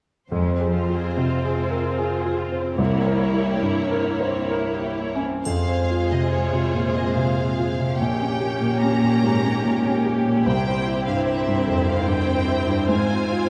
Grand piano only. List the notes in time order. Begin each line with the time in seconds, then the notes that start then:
0.32 F2
0.60 G#4
0.89 F4
1.17 C3
1.45 G#4
1.71 A#4
1.98 G#4
2.25 F4
2.52 C4
2.78 C2
3.06 A#4
3.34 E4
3.62 G2
3.91 A#4
4.20 C5
4.51 A#4
4.82 E4
5.15 C#4
5.46 F2
5.69 C4
5.90 F4
6.12 C3
6.33 C4
6.53 C3
6.74 A#2
6.95 C4
7.17 C3
7.37 C4
7.59 F4
7.79 C3
8.01 A#1
8.21 C#4
8.40 G4
8.61 A#2
8.83 C#4
9.03 A#2
9.24 G#2
9.44 C#4
9.65 A#2
9.86 C#4
10.06 G4
10.27 A#2
10.46 C2
10.68 C4
10.87 E4
11.08 G2
11.26 C4
11.48 G2
11.67 F2
11.86 C4
12.06 G2
12.27 C4
12.48 E4
12.69 G2
12.89 G#2
13.10 C4
13.31 F4